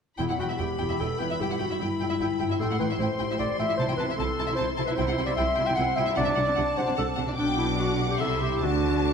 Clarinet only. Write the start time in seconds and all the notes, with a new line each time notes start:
0.19 E4
0.39 F#4
0.57 G4
1.00 A4
1.19 B4
1.41 G4
1.60 F#4
1.80 E4
2.60 A4
2.79 B4
2.99 C5
3.39 D5
3.60 E5
3.77 C5
3.97 B4
4.17 A4
4.56 C5
4.85 B4
4.96 C5
5.26 D5
5.36 E5
5.66 G5
5.75 F#5
5.96 E5
6.17 D5
6.78 C5
6.97 A4
7.38 D4
7.57 E4
7.80 F#4
8.09 G4
8.21 A4
8.42 G4
8.63 F#4